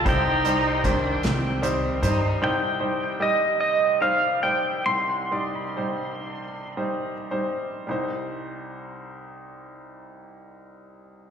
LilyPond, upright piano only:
<<
  \new Staff \with { instrumentName = "Upright piano" } { \time 6/8 \key c \minor \tempo 4. = 46 <g ees' c''>8 <g ees' c''>8 <ees g c''>8 r8 <g ees' c''>8 <g ees' c''>8 | <g ees' c''>8 <g ees' c''>8 <g ees' g'>8 r8 <g ees' c''>8 <g ees' c''>8 | r8 <g ees' d''>8 <g ees' c''>8 r8 <g ees' c''>8 <g ees' c''>8 | <g ees' c''>2. | }
  \new Staff \with { instrumentName = "Upright piano" } { \clef bass \time 6/8 \key c \minor <c, c>2. | <c, c>2. | <c, c>2. | c,2. | }
>>